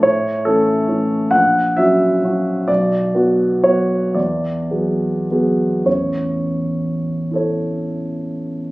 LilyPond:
<<
  \new Staff \with { instrumentName = "Grand piano" } { \time 6/8 \key a \major \tempo 4. = 41 << { cis''8 a'4 fis''8 e''4 | d''4 cis''8 d''4. | cis''2. | } \\ { r2. | r2. | r4. <e' a' cis''>4. | } >> }
  \new Staff \with { instrumentName = "Grand piano" } { \time 6/8 \key a \major a,8 <e a cis'>8 <e a cis'>8 ais,,8 <fis cis' fis'>8 <fis cis' fis'>8 | b,,8 <fis b fis'>8 <fis b fis'>8 e,8 <fis b gis'>8 <fis b gis'>8 | <a,, e,>2. | }
>>